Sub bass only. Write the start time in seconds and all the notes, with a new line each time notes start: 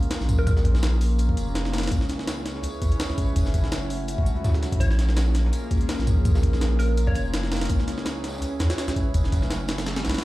0.21 A#1
0.47 A#1
1.37 F1
1.91 C#2
2.82 E2
3.10 C#2
3.36 F#1
4.26 C#2
4.81 A#1
5.71 C#2
5.99 A#1
6.25 A#1
7.16 F1
7.70 C#2
8.60 E2
8.88 C#2
9.14 F#1
10.05 C#2